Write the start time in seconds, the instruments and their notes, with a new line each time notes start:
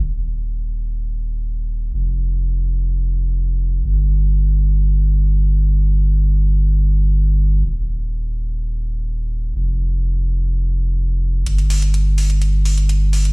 0.04 sub bass D#1
1.94 sub bass F1
3.85 sub bass G1
7.65 sub bass D#1
9.56 sub bass F1
11.46 sub bass G1, closed hi-hat
11.58 closed hi-hat
11.70 open hi-hat
11.82 closed hi-hat
11.94 closed hi-hat
12.18 open hi-hat
12.30 closed hi-hat
12.42 closed hi-hat
12.65 open hi-hat
12.78 closed hi-hat
12.89 closed hi-hat
13.13 open hi-hat
13.25 closed hi-hat